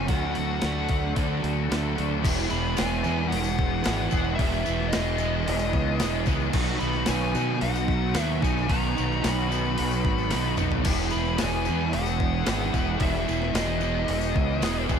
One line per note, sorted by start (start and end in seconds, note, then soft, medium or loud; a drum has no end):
0.00 0.11 F#1 medium
0.08 0.34 D2 medium
0.08 0.62 D3 medium
0.08 0.62 F#3 loud
0.08 0.36 A3 medium
0.08 0.35 D4 loud
0.08 0.34 F#4 medium
0.08 0.34 F#5 loud
0.08 kick loud
0.08 open hi-hat medium
0.35 0.62 D2 medium
0.35 1.15 A3 medium
0.35 1.15 D4 medium
0.35 1.16 F#4 medium
0.35 1.12 F#5 medium
0.35 open hi-hat medium
0.62 0.88 D2 medium
0.62 1.14 D3 medium
0.62 1.15 F#3 medium
0.62 1.16 A3 medium
0.62 1.16 D4 medium
0.62 snare loud
0.62 open hi-hat medium
0.89 1.16 D2 medium
0.89 kick medium
0.89 open hi-hat medium
1.16 1.42 D2 medium
1.16 1.69 D3 medium
1.16 1.70 F#3 medium
1.16 1.70 A3 loud
1.16 1.70 D4 loud
1.16 1.71 F#4 medium
1.16 kick loud
1.16 open hi-hat medium
1.44 1.69 D2 medium
1.44 open hi-hat medium
1.70 1.96 D2 medium
1.70 2.22 D3 medium
1.70 2.22 F#3 medium
1.70 1.96 A3 medium
1.70 1.96 D4 medium
1.70 1.94 F#4 medium
1.70 snare loud
1.70 open hi-hat medium
1.95 2.24 D2 medium
1.95 2.22 A3 medium
1.95 2.22 D4 medium
1.95 2.21 F#4 medium
1.95 open hi-hat medium
2.23 2.50 E1 loud
2.23 4.39 E2 medium
2.23 3.05 B2 medium
2.23 2.76 E3 medium
2.23 2.77 G#3 medium
2.23 2.78 B3 loud
2.23 2.49 E4 loud
2.23 2.78 G#4 loud
2.23 kick loud
2.23 open hi-hat medium
2.23 crash loud
2.38 tambourine soft
2.49 2.77 E1 medium
2.49 2.75 G#3 medium
2.49 2.76 B3 medium
2.49 2.78 E4 medium
2.49 2.78 B5 loud
2.49 tambourine medium
2.64 tambourine soft
2.77 3.05 E1 medium
2.77 3.06 E3 medium
2.77 3.05 G#3 medium
2.77 3.05 B3 medium
2.77 3.02 E4 medium
2.77 3.04 G#4 medium
2.77 3.28 G#5 loud
2.77 snare loud
2.77 open hi-hat medium
2.77 tambourine loud
2.90 tambourine soft
3.03 3.31 E2 medium
3.03 3.29 E3 medium
3.03 3.30 G#3 medium
3.03 3.31 B3 medium
3.03 3.85 E4 medium
3.03 3.31 G#4 medium
3.03 tambourine medium
3.28 3.83 E3 medium
3.28 3.84 G#3 medium
3.28 3.86 B3 medium
3.28 3.85 G#4 medium
3.28 4.41 F#5 loud
3.28 open hi-hat medium
3.32 3.84 E1 medium
3.44 tambourine medium
3.58 kick medium
3.58 tambourine soft
3.84 4.12 G#1 medium
3.84 4.13 E3 medium
3.84 4.12 G#3 medium
3.84 4.12 B3 medium
3.84 4.09 E4 medium
3.84 4.10 G#4 medium
3.84 snare loud
3.84 open hi-hat medium
3.84 tambourine medium
4.10 4.38 E1 medium
4.10 4.39 G#3 medium
4.10 4.40 B3 medium
4.10 4.40 E4 medium
4.10 4.40 G#4 medium
4.10 kick medium
4.10 tambourine medium
4.14 4.38 E3 medium
4.24 tambourine soft
4.35 5.20 E2 loud
4.35 4.88 E5 loud
4.35 kick loud
4.35 open hi-hat medium
4.40 4.65 E1 loud
4.40 5.20 B2 medium
4.40 4.91 E3 medium
4.40 4.92 G#3 loud
4.40 4.93 B3 loud
4.40 4.64 E4 loud
4.40 4.93 G#4 medium
4.52 tambourine soft
4.65 4.93 E1 medium
4.65 4.92 G#3 medium
4.65 4.93 B3 medium
4.65 4.93 E4 medium
4.65 tambourine medium
4.80 snare soft
4.89 5.20 E3 medium
4.89 6.21 D#5 medium
4.89 tambourine loud
4.93 5.46 E1 medium
4.93 5.20 G#3 medium
4.93 5.20 B3 medium
4.93 5.17 E4 medium
4.93 5.18 G#4 medium
4.93 snare loud
4.93 open hi-hat medium
5.05 tambourine soft
5.18 5.44 E3 medium
5.18 5.45 G#3 medium
5.18 5.46 B3 medium
5.18 6.01 E4 medium
5.18 5.46 G#4 medium
5.18 tambourine medium
5.45 5.74 E1 medium
5.45 5.98 E3 medium
5.45 5.99 G#3 medium
5.45 6.00 B3 medium
5.45 6.00 G#4 medium
5.45 open hi-hat medium
5.59 tambourine medium
5.73 6.00 C#2 loud
5.73 kick medium
5.73 tambourine soft
5.99 6.27 E1 medium
5.99 6.27 E3 medium
5.99 6.27 G#3 medium
5.99 6.27 B3 medium
5.99 6.26 E4 medium
5.99 6.25 G#4 medium
5.99 snare loud
5.99 open hi-hat medium
5.99 tambourine loud
6.26 6.53 C#2 medium
6.26 6.53 E3 medium
6.26 6.53 G#3 medium
6.26 6.55 B3 medium
6.26 6.53 E4 medium
6.26 6.52 G#4 medium
6.26 kick medium
6.26 tambourine medium
6.40 tambourine soft
6.53 6.80 B1 loud
6.53 8.69 B2 loud
6.53 7.06 D#3 loud
6.53 7.08 F#3 loud
6.53 7.09 B3 loud
6.53 7.09 D#4 loud
6.53 7.10 F#4 loud
6.53 kick loud
6.53 crash loud
6.67 tambourine soft
6.79 7.07 B1 medium
6.79 7.09 B3 medium
6.79 7.10 D#4 medium
6.79 7.08 B5 loud
6.79 tambourine medium
6.84 7.09 F#3 medium
6.93 snare soft
6.93 tambourine soft
7.06 7.34 B1 loud
7.06 7.62 D#3 medium
7.06 7.60 F#3 medium
7.06 7.36 B3 medium
7.06 7.35 D#4 medium
7.06 7.58 G#5 loud
7.06 snare loud
7.06 open hi-hat medium
7.06 tambourine loud
7.10 7.34 F#4 medium
7.35 7.61 B2 medium
7.35 8.15 F#3 medium
7.35 7.61 B3 medium
7.35 7.62 D#4 medium
7.35 7.62 F#4 medium
7.35 tambourine medium
7.61 8.14 B1 medium
7.61 8.14 F#3 medium
7.61 8.15 B3 medium
7.61 8.16 D#4 medium
7.61 8.16 F#4 medium
7.61 8.23 F#5 loud
7.61 open hi-hat medium
7.76 tambourine medium
7.88 kick medium
7.88 tambourine soft
8.14 8.41 D#2 medium
8.14 8.67 D#3 medium
8.14 8.69 F#3 medium
8.14 8.44 B3 medium
8.14 8.43 D#4 medium
8.14 8.42 F#4 medium
8.14 snare loud
8.14 open hi-hat medium
8.14 tambourine loud
8.23 8.43 E5 loud
8.42 8.69 B1 medium
8.42 8.68 F#3 medium
8.42 8.70 B3 medium
8.42 8.70 D#4 medium
8.42 8.70 F#4 medium
8.42 8.71 G#5 medium
8.42 kick medium
8.42 tambourine medium
8.57 tambourine soft
8.68 8.96 B1 medium
8.68 9.50 B2 medium
8.68 9.20 D#3 medium
8.68 9.22 F#3 medium
8.68 9.23 B3 medium
8.68 9.24 D#4 loud
8.68 9.24 F#4 loud
8.68 9.24 A#5 medium
8.68 kick loud
8.68 open hi-hat medium
8.68 tambourine soft
8.85 tambourine soft
8.95 9.21 F#3 medium
8.95 9.22 B3 medium
8.95 9.23 D#4 medium
8.95 tambourine medium
8.99 9.24 B1 medium
9.12 tambourine soft
9.21 9.76 D#3 medium
9.21 9.76 F#3 medium
9.21 9.53 B3 medium
9.21 9.52 D#4 medium
9.21 9.50 F#4 medium
9.21 10.55 B5 medium
9.21 snare loud
9.21 open hi-hat medium
9.21 tambourine loud
9.25 9.76 B1 medium
9.38 tambourine soft
9.51 10.30 F#3 medium
9.51 9.78 B3 medium
9.51 9.78 D#4 medium
9.51 9.78 F#4 medium
9.51 tambourine medium
9.65 tambourine soft
9.77 10.05 B1 medium
9.77 10.30 F#3 medium
9.77 10.31 B3 medium
9.77 10.32 D#4 medium
9.77 10.32 F#4 medium
9.77 open hi-hat medium
9.77 tambourine soft
9.91 tambourine medium
10.05 10.31 G#1 loud
10.05 kick medium
10.18 tambourine soft
10.30 10.58 B1 medium
10.30 10.83 D#3 medium
10.30 10.83 F#3 medium
10.30 10.59 B3 medium
10.30 10.58 D#4 medium
10.30 10.56 F#4 medium
10.30 snare medium
10.30 open hi-hat medium
10.30 tambourine medium
10.45 tambourine soft
10.57 10.84 F#3 medium
10.57 10.85 B3 medium
10.57 10.85 D#4 medium
10.57 10.83 F#4 medium
10.57 mid tom medium
10.57 tambourine medium
10.61 10.85 B1 medium
10.72 floor tom medium
10.84 11.11 E1 loud
10.84 13.02 E2 loud
10.84 11.66 B2 medium
10.84 11.38 E3 medium
10.84 11.14 G#3 loud
10.84 11.39 B3 medium
10.84 11.39 E4 loud
10.84 11.40 G#4 loud
10.84 kick loud
10.84 open hi-hat medium
10.84 crash loud
10.98 tambourine soft
11.10 11.39 G#3 medium
11.10 11.40 B3 medium
11.10 11.41 E4 medium
11.10 11.39 B5 loud
11.10 tambourine medium
11.15 11.39 E1 medium
11.25 tambourine soft
11.38 11.67 E3 medium
11.38 11.66 G#3 medium
11.38 11.66 B3 medium
11.38 11.66 E4 medium
11.38 11.65 G#4 medium
11.38 11.93 G#5 loud
11.38 snare loud
11.38 open hi-hat medium
11.38 tambourine loud
11.42 11.67 E1 loud
11.52 tambourine soft
11.65 11.91 E3 medium
11.65 12.44 G#3 medium
11.65 11.93 B3 medium
11.65 11.93 E4 medium
11.65 11.93 G#4 medium
11.65 tambourine medium
11.69 11.94 E2 medium
11.92 12.46 E1 medium
11.92 12.45 E3 medium
11.92 12.47 B3 medium
11.92 12.46 E4 medium
11.92 12.47 G#4 medium
11.92 12.97 F#5 loud
11.92 open hi-hat medium
12.06 tambourine medium
12.20 kick medium
12.20 tambourine soft
12.45 12.73 G#1 medium
12.45 12.74 E3 medium
12.45 12.74 G#3 medium
12.45 12.74 B3 medium
12.45 12.73 E4 medium
12.45 12.72 G#4 medium
12.45 snare loud
12.45 open hi-hat medium
12.45 tambourine medium
12.74 13.00 E1 medium
12.74 13.02 E3 medium
12.74 12.98 G#3 medium
12.74 13.02 B3 medium
12.74 13.03 E4 medium
12.74 13.03 G#4 medium
12.74 kick medium
12.74 tambourine medium
12.87 tambourine soft
12.98 13.27 E1 loud
12.98 13.52 E3 loud
12.98 13.28 G#3 loud
12.98 kick loud
12.98 open hi-hat medium
13.02 13.82 E2 medium
13.02 13.82 B2 loud
13.02 13.54 E3 loud
13.02 13.55 B3 loud
13.02 13.55 E4 medium
13.02 13.56 G#4 loud
13.02 13.55 E5 loud
13.15 tambourine soft
13.27 13.53 E1 medium
13.27 13.54 G#3 medium
13.27 13.56 B3 medium
13.27 13.55 E4 medium
13.27 tambourine medium
13.42 snare soft
13.54 14.06 E1 loud
13.54 13.82 E3 medium
13.54 13.82 G#3 medium
13.54 13.82 B3 medium
13.54 13.80 E4 medium
13.54 13.80 G#4 loud
13.54 14.85 D#5 medium
13.54 snare loud
13.54 open hi-hat medium
13.54 tambourine loud
13.81 14.08 E3 medium
13.81 14.60 G#3 medium
13.81 14.09 B3 medium
13.81 14.09 E4 medium
13.81 14.10 G#4 medium
13.81 tambourine medium
14.08 14.34 E1 medium
14.08 14.61 E3 medium
14.08 14.63 B3 medium
14.08 14.62 E4 medium
14.08 14.63 G#4 medium
14.08 open hi-hat medium
14.21 tambourine medium
14.34 14.61 C#2 loud
14.34 kick medium
14.34 tambourine soft
14.62 14.88 E1 medium
14.62 14.90 E3 medium
14.62 14.89 G#3 medium
14.62 14.90 B3 medium
14.62 14.89 E4 medium
14.62 14.88 G#4 medium
14.62 snare loud
14.62 open hi-hat medium
14.62 tambourine loud
14.89 14.99 E1 medium
14.89 14.99 E3 medium
14.89 14.99 G#3 medium
14.89 14.99 B3 medium
14.89 14.99 E4 medium
14.89 14.99 G#4 medium
14.89 kick medium
14.89 tambourine medium